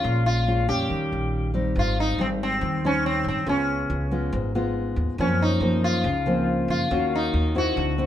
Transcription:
Already playing: nylon-string guitar G#3 C#4 F4, sitar F4
0.04 upright bass A#1, nylon-string guitar A#2
0.26 sitar F4
0.47 nylon-string guitar G#3 C#4 F4
0.68 upright bass F2, nylon-string guitar G3 C#4, sitar G4
0.89 upright bass D#2, nylon-string guitar D#3
1.12 upright bass A#1
1.54 nylon-string guitar G3 C4 D#4
1.75 upright bass G#1, nylon-string guitar G#2, sitar F4
2.00 sitar D#4
2.18 upright bass G#1, nylon-string guitar G3 C4 D#4, sitar C4
2.43 sitar C4
2.61 upright bass D#2, nylon-string guitar D#3
2.84 nylon-string guitar G3 C4 D#4, sitar C#4
3.06 sitar C4
3.24 upright bass G#1
3.28 sitar C4
3.46 upright bass C#2, nylon-string guitar C#3 G#3 B3 F4, sitar C#4
3.90 upright bass C#2
4.11 nylon-string guitar G#3 B3 F4
4.33 upright bass G#1, nylon-string guitar G#2
4.55 nylon-string guitar G#3 B3 F4
4.96 upright bass D#2
5.18 upright bass F#2, nylon-string guitar F#2 F3 A#3 C4, sitar C#4
5.42 sitar D#4
5.60 upright bass F#2, nylon-string guitar F3 A#3 C4
5.84 sitar F4
6.04 upright bass C#2, nylon-string guitar C#3
6.26 nylon-string guitar F3 A#3 C4
6.68 upright bass F#2, sitar F4
6.91 upright bass D#2, nylon-string guitar D#3 A#3 C#4 F#4
7.16 sitar D#4
7.34 upright bass D#2
7.55 nylon-string guitar C4 E4 F#4, sitar F#4
7.76 upright bass D2, nylon-string guitar D3
7.98 nylon-string guitar C4 E4 F#4

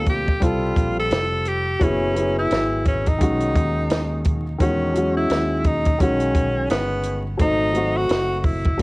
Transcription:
Already playing: fretless electric bass D2, grand piano G3 A#3 C4 F4
0.06 tenor saxophone G4, kick, closed hi-hat
0.28 muted fretless electric bass stroke, kick
0.40 fretless electric bass C2, grand piano G3 C4 F4 A4, tenor saxophone F4, kick, closed hi-hat
0.76 fretless electric bass A#1, kick, closed hi-hat
0.99 tenor saxophone A4
1.11 fretless electric bass F1, snare, closed hi-hat
1.45 tenor saxophone G4, closed hi-hat
1.80 fretless electric bass F#1, grand piano F#3 B3 E4 G#4, tenor saxophone C#4, kick, closed hi-hat
2.15 grand piano F#3 B3 E4 G#4, closed hi-hat
2.39 tenor saxophone E4
2.51 fretless electric bass G#1, snare, closed hi-hat
2.85 tenor saxophone C#4, kick, closed hi-hat
3.06 tenor saxophone D#4, kick, closed hi-hat
3.18 fretless electric bass B1, grand piano D#3 G#3 C#4, kick, closed hi-hat
3.22 grand piano F#4
3.40 closed hi-hat
3.55 fretless electric bass D#2, kick, closed hi-hat
3.90 fretless electric bass D#2, snare, closed hi-hat
4.24 kick, closed hi-hat
4.58 fretless electric bass E2, grand piano D#3 G#3 C#4, tenor saxophone C#4, kick, closed hi-hat
4.62 grand piano F#4
4.94 grand piano F#3 G#3 C#4 F#4, closed hi-hat
5.17 tenor saxophone E4
5.30 fretless electric bass D#2, snare, closed hi-hat
5.64 tenor saxophone D#4, kick, closed hi-hat
5.85 kick, closed hi-hat
5.99 fretless electric bass B1, grand piano D#3 G#3 C#4 F#4, tenor saxophone C#4, kick, closed hi-hat
6.20 closed hi-hat
6.35 kick, closed hi-hat
6.70 fretless electric bass G1, tenor saxophone B3, snare, closed hi-hat
7.03 closed hi-hat
7.37 fretless electric bass G#1, grand piano F#3 A3 C4 D#4, tenor saxophone D#4, kick, closed hi-hat
7.73 grand piano F#3 A3 C4 F#4, closed hi-hat
7.97 tenor saxophone F#4
8.09 fretless electric bass F#1, snare, closed hi-hat
8.39 tenor saxophone F#4
8.43 tenor saxophone E4, kick, open hi-hat
8.64 kick, closed hi-hat
8.78 grand piano F#3 A3

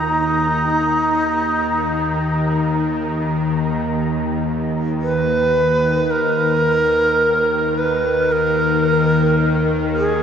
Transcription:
Already playing: synth drone D#2 D#3, shakuhachi D#4, synth texture A#5
3.89 synth drone D#2 D#3
5.02 shakuhachi B4
6.11 shakuhachi A#4
7.78 shakuhachi B4
8.32 shakuhachi A#4
9.97 shakuhachi G#4

